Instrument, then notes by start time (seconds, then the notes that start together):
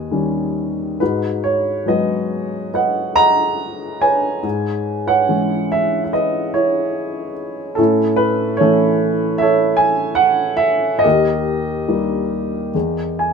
upright piano
Already playing: D#2 G#4 B4 D#5
0.11 D#3 G3 C#4
1.00 G#2 D#4 F#4 B4
1.44 C#5
1.86 F#3 G#3 B3 F#4 B4 D#5
2.74 B4 D#5 F#5
3.15 D#5 F#5 A#5
4.00 B4 C#5 G#5
4.43 G#2
5.07 B4 C#5 F#5
5.29 E3 G#3 C#4
5.72 E5
6.04 E5
6.13 B4 D#5
6.54 E4 C#5
7.75 A2 C#4 E4 A4
8.16 B4
8.57 E3 E4 A4 C#5
8.61 A3 C#4
9.38 C#5 E5
9.42 A4
9.77 G#5
10.15 F#5
10.57 E5
10.99 D#5
11.04 D#2 G4 A#4
11.88 G3 A#3 D#4
12.74 E2
13.19 G#5